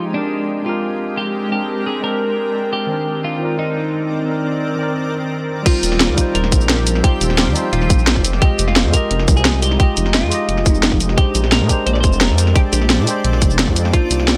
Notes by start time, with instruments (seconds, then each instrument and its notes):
Already playing: ambient pad F3 G#3 D#4 G4, tine electric piano F3 G#3 D#4 G4
0.11 tine electric piano G#3 C4 D4, ambient pad C4 D4 G4 A#4, clean electric guitar D4
0.16 tine electric piano G4 A#4
0.63 tine electric piano G#3 C4 D4, clean electric guitar F4
0.68 tine electric piano G4 A#4
1.18 clean electric guitar G4
1.49 tine electric piano G#3 C4 D4, clean electric guitar G4
1.54 tine electric piano G4 A#4
1.87 clean electric guitar G#4
2.01 tine electric piano G#3 C4 D4, clean electric guitar A#4
2.05 tine electric piano G4 A#4
2.73 clean electric guitar G4
2.87 tine electric piano D#3 C4, ambient pad D#3 C4 A#4 D5
2.91 tine electric piano D4 A#4
3.24 clean electric guitar F4
3.38 tine electric piano D#3 C4
3.43 tine electric piano A#4 D5
3.59 clean electric guitar D#4
4.25 tine electric piano D#3 C4
4.29 tine electric piano A#4 D5
4.76 tine electric piano D#3 C4
4.81 tine electric piano A#4 D5
5.63 ambient pad F3 C4 G4, tine electric piano G3 D#4, clean electric guitar F4, kick, closed hi-hat, crash
5.67 tine electric piano F4 C5
5.83 detuned saw bass D#1, closed hi-hat, shaker
5.92 snare
6.00 snare, closed hi-hat
6.09 detuned saw bass D#2
6.14 tine electric piano G3 D#4, kick, closed hi-hat, shaker
6.19 tine electric piano F4 C5
6.35 detuned saw bass D#1, clean electric guitar A#4, closed hi-hat
6.44 snare
6.52 detuned saw bass A#1, kick, closed hi-hat, shaker
6.61 shaker
6.69 snare, closed hi-hat
6.78 detuned saw bass A#1
6.87 closed hi-hat, shaker
6.95 snare
7.01 tine electric piano G3 D#4, clean electric guitar G4, kick, closed hi-hat
7.05 tine electric piano F4 C5
7.21 detuned saw bass D#1, closed hi-hat, shaker
7.30 snare
7.38 snare, closed hi-hat
7.47 detuned saw bass D#2
7.52 tine electric piano G3 D#4, open hi-hat, shaker
7.57 tine electric piano F4 C5
7.73 detuned saw bass D#1, clean electric guitar F4, closed hi-hat
7.82 snare
7.90 detuned saw bass A#1, kick, closed hi-hat, shaker
7.99 shaker
8.07 snare, closed hi-hat
8.16 detuned saw bass F1, kick
8.25 ambient pad D#4, closed hi-hat, shaker
8.33 snare
8.38 tine electric piano G#3 F4, clean electric guitar G4, kick, closed hi-hat
8.43 tine electric piano G4 D#5
8.59 detuned saw bass F1, closed hi-hat, shaker
8.68 clean electric guitar F4, snare
8.76 snare, closed hi-hat
8.85 detuned saw bass F2
8.90 tine electric piano G#3 F4, clean electric guitar A#4, kick, closed hi-hat, shaker
8.95 tine electric piano G4 D#5
9.11 detuned saw bass F1, closed hi-hat
9.19 snare
9.28 detuned saw bass C2, kick, closed hi-hat, shaker
9.37 clean electric guitar G#4, shaker
9.45 snare, closed hi-hat
9.54 detuned saw bass C2
9.62 clean electric guitar G4, closed hi-hat, shaker
9.71 snare
9.77 tine electric piano G#3 F4, clean electric guitar G4, kick, closed hi-hat
9.81 tine electric piano G4 D#5
9.97 detuned saw bass F1, closed hi-hat, shaker
10.06 snare
10.14 clean electric guitar F4, snare, closed hi-hat
10.23 detuned saw bass F2
10.28 tine electric piano G#3 F4, open hi-hat, shaker
10.32 tine electric piano G4 D#5
10.49 detuned saw bass F1, closed hi-hat
10.57 snare
10.66 detuned saw bass F1, kick, closed hi-hat, shaker
10.73 clean electric guitar D#4, shaker
10.83 snare, closed hi-hat
10.92 detuned saw bass F1, kick
11.00 closed hi-hat, shaker
11.09 snare
11.14 tine electric piano G#3 D4, ambient pad C4 D5, clean electric guitar G4, kick, closed hi-hat
11.19 tine electric piano G4 C5
11.35 detuned saw bass A#1, closed hi-hat, shaker
11.44 snare
11.52 clean electric guitar A#4, snare, closed hi-hat
11.61 detuned saw bass A#2
11.66 tine electric piano G#3 D4, kick, closed hi-hat, shaker
11.70 tine electric piano G4 C5
11.87 detuned saw bass A#1, clean electric guitar C5, closed hi-hat
11.93 clean electric guitar D5, snare
12.01 detuned saw bass F1, clean electric guitar C5, kick, closed hi-hat, shaker
12.13 shaker
12.21 clean electric guitar A#4, snare, closed hi-hat
12.30 detuned saw bass F2
12.38 closed hi-hat, shaker
12.47 snare
12.52 tine electric piano G#3 D4, clean electric guitar G4, kick, closed hi-hat
12.57 tine electric piano G4 C5
12.73 detuned saw bass A#1, clean electric guitar G4, closed hi-hat, shaker
12.81 snare
12.90 snare, closed hi-hat
12.99 detuned saw bass A#2
13.04 tine electric piano G#3 D4, open hi-hat, shaker
13.08 tine electric piano G4 C5
13.24 detuned saw bass A#1, closed hi-hat
13.33 snare
13.42 detuned saw bass F1, kick, closed hi-hat, shaker
13.51 shaker
13.59 snare, closed hi-hat
13.68 detuned saw bass F2, kick
13.76 closed hi-hat, shaker
13.85 snare
13.90 ambient pad D#3 A#4, tine electric piano A#3 D4, clean electric guitar F4, kick, closed hi-hat
13.94 tine electric piano D#4 C5
14.11 detuned saw bass C2, closed hi-hat, shaker
14.20 snare
14.28 snare, closed hi-hat